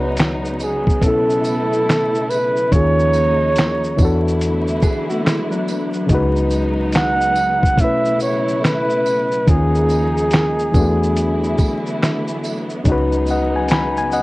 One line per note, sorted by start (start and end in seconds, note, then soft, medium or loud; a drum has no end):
0.00 1.01 C#2 loud
0.00 0.97 C#3 medium
0.00 3.94 C#3 medium
0.00 2.68 F#3 medium
0.00 1.01 G#3 medium
0.00 0.98 B3 medium
0.00 2.68 B3 medium
0.00 0.99 D#4 medium
0.00 1.01 D#4 medium
0.00 1.00 F#4 medium
0.00 0.19 B4 medium
0.00 1.02 C#5 medium
0.00 1.04 D5 soft
0.00 1.04 F#5 medium
0.17 snare loud
0.17 clap medium
0.17 closed hi-hat medium
0.17 shaker medium
0.45 shaker medium
0.59 1.04 G#4 medium
0.59 tambourine medium
0.59 shaker soft
0.87 kick medium
0.87 shaker medium
1.00 1.40 B1 loud
1.00 2.67 B2 medium
1.00 2.70 A3 medium
1.00 2.68 B3 medium
1.00 2.69 C#4 medium
1.00 2.70 E4 medium
1.00 2.31 A4 medium
1.00 kick medium
1.00 closed hi-hat medium
1.00 shaker medium
1.06 2.70 E4 medium
1.06 2.71 A4 medium
1.30 shaker soft
1.44 tambourine medium
1.44 shaker soft
1.73 shaker soft
1.90 snare loud
1.90 clap medium
1.90 closed hi-hat medium
1.90 shaker medium
2.15 shaker soft
2.29 2.73 B4 loud
2.29 tambourine medium
2.29 shaker soft
2.56 shaker soft
2.71 3.94 D#2 loud
2.71 3.98 D#3 medium
2.71 3.97 F3 medium
2.71 3.97 G#3 medium
2.71 3.98 A#3 medium
2.71 3.97 A#3 medium
2.71 3.99 C#4 medium
2.71 3.97 D#4 medium
2.71 4.00 F4 medium
2.71 4.00 G#4 medium
2.71 4.41 C#5 loud
2.71 kick loud
2.71 closed hi-hat medium
2.71 shaker medium
2.99 shaker soft
3.13 tambourine soft
3.13 shaker soft
3.56 snare loud
3.56 clap medium
3.56 closed hi-hat medium
3.56 shaker medium
3.84 shaker soft
3.97 4.79 E2 loud
3.97 6.07 D3 medium
3.97 6.05 E3 medium
3.97 9.43 F#3 medium
3.97 6.07 A3 medium
3.97 9.43 B3 medium
3.97 6.05 B3 medium
3.97 6.07 D4 medium
3.97 6.07 E4 medium
3.97 kick loud
3.97 tambourine medium
3.97 shaker soft
4.03 6.08 F#4 medium
4.03 6.09 A4 medium
4.28 shaker medium
4.41 closed hi-hat medium
4.41 shaker medium
4.68 shaker soft
4.82 5.09 B3 medium
4.82 5.09 G#4 medium
4.82 kick medium
4.82 tambourine medium
4.82 shaker soft
5.10 5.24 A3 medium
5.10 5.24 F#4 medium
5.10 shaker soft
5.25 5.51 G#3 medium
5.25 5.51 E4 medium
5.25 snare loud
5.25 clap medium
5.25 closed hi-hat medium
5.25 shaker medium
5.51 6.06 F#3 medium
5.51 6.06 D4 medium
5.51 shaker soft
5.68 tambourine medium
5.68 shaker soft
5.94 shaker soft
6.07 7.78 C#2 loud
6.07 7.74 C#3 medium
6.07 10.70 C#3 medium
6.07 7.75 G#3 medium
6.07 7.77 G#3 medium
6.07 7.77 D#4 medium
6.07 kick loud
6.07 closed hi-hat medium
6.07 shaker medium
6.11 7.76 D#4 medium
6.11 7.77 F#4 medium
6.15 7.78 B4 medium
6.36 shaker soft
6.51 tambourine soft
6.51 shaker soft
6.93 7.82 F#5 loud
6.93 snare loud
6.93 clap medium
6.93 closed hi-hat medium
6.93 shaker medium
7.21 shaker medium
7.35 tambourine medium
7.35 shaker soft
7.63 kick medium
7.63 shaker medium
7.75 9.42 B2 medium
7.75 9.45 A3 medium
7.75 9.44 A3 medium
7.75 9.45 E4 medium
7.75 kick medium
7.75 closed hi-hat medium
7.75 shaker medium
7.80 9.45 C#4 medium
7.80 9.45 E4 medium
7.80 8.22 E5 loud
7.84 9.47 B4 medium
8.05 shaker soft
8.20 8.61 C#5 medium
8.20 tambourine medium
8.20 shaker soft
8.48 shaker soft
8.65 9.51 B4 loud
8.65 snare loud
8.65 clap medium
8.65 closed hi-hat medium
8.65 shaker medium
8.90 shaker soft
9.06 tambourine medium
9.06 shaker soft
9.32 shaker soft
9.47 10.70 D#2 loud
9.47 10.74 D#3 medium
9.47 10.73 F3 medium
9.47 10.73 G#3 medium
9.47 10.74 A#3 medium
9.47 10.73 A#3 medium
9.47 10.75 C#4 medium
9.47 10.73 D#4 medium
9.47 10.75 F4 medium
9.47 12.02 G#4 medium
9.47 kick loud
9.47 closed hi-hat medium
9.47 shaker medium
9.51 10.76 G#4 medium
9.75 shaker soft
9.89 tambourine soft
9.89 shaker soft
10.17 shaker medium
10.31 snare loud
10.31 clap medium
10.31 closed hi-hat medium
10.31 shaker medium
10.59 shaker medium
10.72 11.55 E2 loud
10.72 12.84 D3 medium
10.72 12.80 E3 medium
10.72 14.23 F#3 medium
10.72 12.83 A3 medium
10.72 12.81 B3 medium
10.72 14.23 B3 medium
10.72 12.83 E4 medium
10.72 kick loud
10.72 tambourine medium
10.72 shaker soft
10.76 12.84 A3 medium
10.76 12.82 D4 medium
10.76 12.83 F#4 medium
11.03 shaker medium
11.17 closed hi-hat medium
11.17 shaker medium
11.44 shaker soft
11.58 kick medium
11.58 tambourine medium
11.58 shaker medium
11.86 shaker soft
12.03 snare loud
12.03 clap medium
12.03 closed hi-hat medium
12.03 shaker medium
12.28 shaker soft
12.44 tambourine medium
12.44 shaker soft
12.70 shaker soft
12.84 14.23 C#2 loud
12.84 14.23 C#3 medium
12.84 14.23 G#3 medium
12.84 14.23 C#4 medium
12.84 14.23 D#4 medium
12.84 kick loud
12.84 closed hi-hat medium
12.84 shaker medium
12.89 14.23 F#4 medium
12.89 13.30 B4 medium
13.12 shaker soft
13.26 tambourine soft
13.26 shaker soft
13.30 13.55 D#5 medium
13.30 13.55 F#5 medium
13.56 13.70 G#5 medium
13.69 13.97 G#5 medium
13.69 13.96 B5 medium
13.69 snare loud
13.69 clap medium
13.69 closed hi-hat medium
13.69 shaker medium
13.97 14.12 G#5 medium
13.97 shaker medium
14.12 14.23 D#5 medium
14.12 14.23 F#5 medium
14.12 tambourine medium
14.12 shaker soft